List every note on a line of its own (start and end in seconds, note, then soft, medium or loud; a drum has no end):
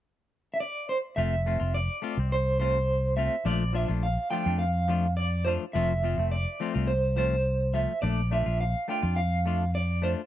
0.54 0.60 E5 medium
0.60 0.87 D5 medium
0.89 0.97 C5 medium
1.16 1.58 F1 medium
1.16 1.34 A3 medium
1.16 1.35 C4 medium
1.16 1.35 F4 medium
1.16 1.74 E5 medium
1.46 1.60 A3 medium
1.46 1.60 C4 medium
1.46 1.59 F4 medium
1.60 1.87 F1 medium
1.60 1.77 C4 soft
1.60 1.77 F4 soft
1.74 2.27 D5 medium
2.02 2.17 A3 medium
2.02 2.17 C4 medium
2.02 2.18 F4 medium
2.17 3.28 C2 medium
2.17 2.35 C4 soft
2.32 2.58 C5 medium
2.60 2.77 A3 soft
2.60 2.78 C4 medium
2.60 2.78 F4 medium
2.60 3.16 C5 medium
3.17 3.34 A3 soft
3.17 3.35 C4 medium
3.17 3.35 F4 medium
3.17 3.45 E5 medium
3.45 3.86 A#1 medium
3.45 3.63 F3 medium
3.45 3.63 A3 medium
3.45 3.63 D4 medium
3.45 3.63 F4 medium
3.45 3.72 D5 medium
3.73 3.88 F3 medium
3.73 3.88 D4 medium
3.73 3.87 F4 medium
3.73 3.83 E5 medium
3.73 muted clean electric guitar stroke medium
3.88 4.16 A#1 medium
3.88 4.06 A3 soft
3.88 4.06 D4 soft
3.88 4.05 F4 soft
4.03 4.30 F5 medium
4.31 4.46 F3 medium
4.31 4.46 A3 medium
4.31 4.46 D4 medium
4.31 4.45 F4 medium
4.31 4.58 G5 loud
4.46 5.56 F2 medium
4.46 4.64 A3 soft
4.46 4.63 D4 soft
4.46 4.63 F4 soft
4.59 5.16 F5 medium
4.88 5.06 F3 medium
4.88 5.06 A3 medium
4.88 5.06 D4 medium
4.88 5.07 F4 medium
5.17 5.43 D5 medium
5.45 5.63 F3 medium
5.45 5.64 A3 medium
5.45 5.64 D4 medium
5.45 5.64 F4 medium
5.45 5.53 C5 medium
5.73 6.16 F1 medium
5.73 5.92 F3 medium
5.73 5.92 A3 medium
5.73 5.92 C4 medium
5.73 5.92 F4 medium
5.73 6.27 E5 medium
6.03 6.18 F3 medium
6.03 6.18 C4 medium
6.03 6.17 F4 medium
6.03 muted clean electric guitar stroke medium
6.18 6.45 F1 medium
6.18 6.35 A3 soft
6.18 6.35 C4 soft
6.18 muted clean electric guitar stroke soft
6.32 6.90 D5 medium
6.60 6.75 F3 medium
6.60 6.75 A3 medium
6.60 6.74 C4 medium
6.60 6.73 F4 medium
6.74 7.85 C2 medium
6.74 6.92 A3 soft
6.74 6.92 C4 soft
6.74 6.91 F4 medium
6.87 7.16 C5 medium
7.16 7.34 F3 medium
7.16 7.35 A3 medium
7.16 7.35 C4 medium
7.16 7.35 F4 medium
7.16 7.76 C5 medium
7.74 7.91 F3 medium
7.74 7.92 A3 medium
7.74 7.92 F4 medium
7.74 8.01 E5 medium
7.74 muted clean electric guitar stroke medium
8.02 8.44 A#1 medium
8.02 8.20 A3 medium
8.02 8.20 D4 medium
8.02 8.32 D5 medium
8.02 muted clean electric guitar stroke medium
8.31 8.46 A3 soft
8.31 8.46 D4 medium
8.31 8.45 F4 medium
8.31 8.60 E5 medium
8.46 8.73 A#1 medium
8.46 8.64 D4 soft
8.46 8.63 F4 soft
8.61 8.89 F5 medium
8.88 9.03 A3 medium
8.88 9.03 D4 medium
8.88 9.01 F4 medium
8.88 9.16 G5 medium
9.02 10.14 F2 medium
9.02 9.21 D4 soft
9.02 9.20 F4 medium
9.16 9.70 F5 medium
9.46 9.63 A3 medium
9.46 9.64 D4 medium
9.46 9.64 F4 medium
9.75 10.01 D5 medium
10.02 10.20 A3 medium
10.02 10.21 D4 medium
10.02 10.21 F4 medium
10.02 10.09 C5 medium